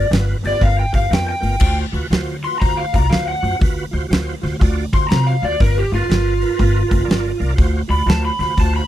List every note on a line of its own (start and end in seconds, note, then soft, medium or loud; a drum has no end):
0.10 0.33 G1 loud
0.10 0.36 B3 medium
0.10 0.37 F4 medium
0.10 0.38 B4 loud
0.10 snare loud
0.10 open hi-hat medium
0.43 0.55 G1 medium
0.43 0.57 B3 medium
0.43 0.58 F4 medium
0.43 0.58 G4 medium
0.43 snare soft
0.43 open hi-hat medium
0.47 0.62 D5 medium
0.59 0.83 G1 loud
0.59 0.85 B3 medium
0.59 0.86 F4 medium
0.59 0.86 A#4 loud
0.59 0.78 F5 medium
0.59 kick medium
0.59 open hi-hat medium
0.79 0.95 G5 medium
0.92 1.06 G1 medium
0.92 1.07 B3 medium
0.92 1.07 F4 medium
0.92 1.07 G4 medium
0.92 1.11 F5 loud
0.92 kick medium
0.92 open hi-hat medium
1.09 1.33 F2 medium
1.09 1.35 B3 medium
1.09 1.36 F4 medium
1.09 1.36 A#4 medium
1.09 open hi-hat medium
1.13 1.28 G5 loud
1.13 snare loud
1.29 1.77 G5 loud
1.41 1.55 G1 medium
1.41 1.56 B3 medium
1.41 1.56 F4 medium
1.41 1.56 A#4 medium
1.41 open hi-hat medium
1.59 1.83 D2 medium
1.59 1.85 F4 loud
1.59 1.86 F#4 medium
1.59 1.86 C5 loud
1.59 kick loud
1.59 crash loud
1.92 2.05 D2 medium
1.92 2.06 F4 medium
1.92 2.07 F#4 medium
1.92 2.07 B4 medium
1.92 open hi-hat medium
2.10 2.44 D2 medium
2.10 2.36 F4 medium
2.10 2.37 F#4 medium
2.10 2.37 C5 loud
2.10 snare loud
2.10 open hi-hat medium
2.43 2.57 F4 medium
2.43 2.58 F#4 medium
2.43 2.59 B4 medium
2.43 2.60 C6 loud
2.43 open hi-hat medium
2.59 2.83 D2 loud
2.59 2.86 F4 medium
2.59 2.86 F#4 medium
2.59 2.86 C5 loud
2.59 2.77 A#5 loud
2.59 kick medium
2.59 open hi-hat medium
2.77 2.94 F5 medium
2.93 3.06 C2 loud
2.93 3.07 F4 medium
2.93 3.07 F#4 medium
2.93 3.07 D5 medium
2.93 3.11 A#5 loud
2.93 kick medium
2.93 open hi-hat medium
3.08 3.32 D2 medium
3.08 3.35 F4 medium
3.08 3.35 F#4 medium
3.08 3.36 C5 medium
3.08 3.26 F5 loud
3.08 open hi-hat medium
3.13 snare loud
3.28 3.54 F#5 loud
3.42 3.55 F#2 medium
3.42 3.56 F4 medium
3.42 3.57 F#4 medium
3.42 3.57 C5 medium
3.42 open hi-hat medium
3.59 3.83 D2 medium
3.59 3.85 F4 loud
3.59 3.85 F#4 medium
3.59 3.86 B4 loud
3.59 kick loud
3.59 open hi-hat medium
3.91 4.05 D2 medium
3.91 4.06 F4 medium
3.91 4.07 F#4 medium
3.91 4.07 C5 loud
3.91 open hi-hat medium
4.08 4.32 D2 medium
4.08 4.35 F4 loud
4.08 4.35 F#4 medium
4.08 4.36 C5 loud
4.08 open hi-hat medium
4.13 snare loud
4.42 4.55 D2 medium
4.42 4.56 F4 medium
4.42 4.57 F#4 medium
4.42 4.57 C5 medium
4.42 snare soft
4.42 open hi-hat medium
4.59 4.83 D2 loud
4.59 4.85 F4 loud
4.59 4.86 F#4 medium
4.59 4.86 D5 loud
4.59 kick medium
4.59 open hi-hat medium
4.93 5.04 D2 loud
4.93 5.07 F4 medium
4.93 5.07 F#4 medium
4.93 5.07 C5 medium
4.93 5.09 C6 loud
4.93 kick loud
4.93 open hi-hat medium
5.09 5.32 C3 medium
5.09 5.36 F4 medium
5.09 5.37 F#4 medium
5.09 5.36 C5 medium
5.09 5.26 A#5 medium
5.09 snare loud
5.09 open hi-hat medium
5.27 5.43 F5 loud
5.42 5.54 D2 medium
5.42 5.57 F4 medium
5.42 5.57 F#4 medium
5.42 5.57 C5 medium
5.42 5.60 D5 loud
5.42 open hi-hat medium
5.60 5.82 G1 loud
5.60 5.85 F4 loud
5.60 5.76 A#4 loud
5.60 5.86 A#4 medium
5.60 5.87 B4 loud
5.60 kick loud
5.60 open hi-hat medium
5.78 5.93 G4 loud
5.92 6.04 G1 medium
5.92 6.06 F4 medium
5.92 7.39 F4 loud
5.92 6.06 A#4 medium
5.92 6.07 B4 medium
5.92 open hi-hat medium
6.08 6.43 G1 medium
6.08 6.34 F4 medium
6.08 6.34 A#4 medium
6.08 6.34 B4 medium
6.08 snare loud
6.08 open hi-hat medium
6.40 6.55 F4 medium
6.40 6.55 A#4 medium
6.40 6.55 B4 medium
6.40 open hi-hat medium
6.56 6.81 G1 loud
6.56 6.83 F4 loud
6.56 6.83 A#4 loud
6.56 6.83 B4 loud
6.56 kick medium
6.60 open hi-hat medium
6.87 7.03 F4 medium
6.87 7.03 A#4 medium
6.87 7.04 B4 loud
6.91 7.03 F1 loud
6.91 kick medium
6.91 open hi-hat medium
7.04 7.30 G1 medium
7.04 7.32 F4 loud
7.04 7.32 A#4 medium
7.04 7.32 D5 loud
7.09 snare loud
7.09 open hi-hat medium
7.38 7.52 C2 medium
7.38 7.53 F4 loud
7.38 7.54 A#4 medium
7.38 7.54 D5 loud
7.38 open hi-hat medium
7.54 7.81 F4 loud
7.54 7.82 F#4 loud
7.54 7.83 C5 loud
7.58 7.80 D2 loud
7.58 kick loud
7.58 open hi-hat medium
7.88 8.01 D2 loud
7.88 8.03 F4 medium
7.88 8.04 F#4 medium
7.88 8.04 D5 medium
7.88 8.07 B5 loud
7.88 open hi-hat medium
8.06 8.29 D2 loud
8.06 8.32 F4 medium
8.06 8.33 F#4 medium
8.06 8.33 C5 medium
8.06 8.25 A5 medium
8.06 open hi-hat medium
8.10 snare loud
8.25 8.40 B5 loud
8.39 8.51 D2 medium
8.39 8.55 F4 medium
8.39 8.55 F#4 medium
8.39 8.55 C5 medium
8.39 8.57 B5 loud
8.39 snare soft
8.39 open hi-hat medium
8.57 8.79 D2 loud
8.57 8.84 F4 loud
8.57 8.84 F#4 medium
8.57 8.84 C5 loud
8.57 8.75 A5 loud
8.57 kick medium
8.57 open hi-hat medium
8.76 8.87 B5 medium